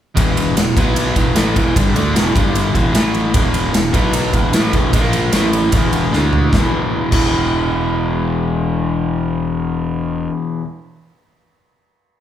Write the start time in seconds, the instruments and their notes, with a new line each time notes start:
0.15 fingered electric bass E1, overdriven electric guitar E2 B2 E3, kick, ride
0.37 ride
0.56 fingered electric bass E1, overdriven electric guitar E2 B2, snare, ride
0.77 fingered electric bass B1, overdriven electric guitar B2 F#3 B3, kick, ride
0.96 ride
1.16 fingered electric bass E1, overdriven electric guitar E2 B2 E3, kick, ride
1.34 fingered electric bass A1, overdriven electric guitar A2 E3 A3, snare, ride
1.55 fingered electric bass E1, overdriven electric guitar E2 B2 E3, kick, ride
1.76 fingered electric bass G1, overdriven electric guitar G2 D3 G3, kick, ride
1.94 fingered electric bass D2, overdriven electric guitar D3 A3 D4, ride
2.13 fingered electric bass E1, overdriven electric guitar E2 B2 E3, snare, ride
2.34 fingered electric bass G1, overdriven electric guitar G2 D3 G3, kick, ride
2.55 ride
2.74 fingered electric bass E1, overdriven electric guitar E2 B2 E3, kick, ride
2.93 fingered electric bass A1, overdriven electric guitar A2 E3 A3, snare, ride
3.14 ride
3.34 fingered electric bass E1, overdriven electric guitar E2 B2 E3, kick, ride
3.54 ride
3.74 fingered electric bass E1, overdriven electric guitar E2 B2, snare, ride
3.93 fingered electric bass B1, overdriven electric guitar B2 F#3 B3, kick, ride
4.13 ride
4.33 fingered electric bass E1, overdriven electric guitar E2 B2 E3, kick, ride
4.53 fingered electric bass A1, overdriven electric guitar A2 E3 A3, snare, ride
4.73 fingered electric bass E1, overdriven electric guitar E2 B2 E3, kick, ride
4.92 fingered electric bass A#1, overdriven electric guitar A#2 F3 A#3, kick, ride
5.13 ride
5.33 fingered electric bass A1, overdriven electric guitar A2 E3 A3, snare, ride
5.53 ride
5.72 fingered electric bass E1, overdriven electric guitar E2 B2 E3, kick, ride
5.93 ride
6.12 fingered electric bass D2, overdriven electric guitar D3 A3 D4, snare
6.33 floor tom
6.53 fingered electric bass E1, overdriven electric guitar E2 B2, kick, snare
6.57 overdriven electric guitar E3
7.12 fingered electric bass E1, overdriven electric guitar E2 B2 E3, kick, crash